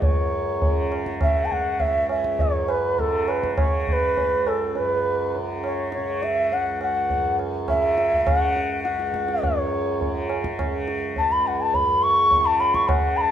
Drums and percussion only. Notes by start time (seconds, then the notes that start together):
0.02 tabla tin, tabla ge
0.62 tabla tin, tabla ge
0.92 tabla na
1.06 tabla ke
1.21 tabla na, tabla ge
1.51 tabla ge
1.80 tabla tin, tabla ge
2.09 tabla na
2.24 tabla ke
2.39 tabla tin, tabla ge
2.68 tabla na
2.98 tabla tin, tabla ge
3.28 tabla na
3.43 tabla ke
3.58 tabla na, tabla ge
3.87 tabla ge
4.17 tabla tin, tabla ge
4.47 tabla na
4.75 tabla tin
5.35 tabla tin
5.64 tabla na
5.92 tabla te
6.23 tabla te
6.52 tabla tin
6.81 tabla na
7.10 tabla tin, tabla ge
7.39 tabla na
7.68 tabla na, tabla ge
7.98 tabla te
8.13 tabla ge
8.27 tabla na, tabla ge
8.56 tabla te
8.85 tabla te
8.99 tabla te
9.14 tabla ke
9.28 tabla te
9.43 tabla tin, tabla ge
10.01 tabla tin, tabla ge
10.30 tabla na
10.44 tabla ke
10.59 tabla na, tabla ge
10.88 tabla te
11.16 tabla tin, tabla ge
11.74 tabla tin, tabla ge
12.31 tabla tin, tabla ge
12.60 tabla na
12.74 tabla ke
12.89 tabla na, tabla ge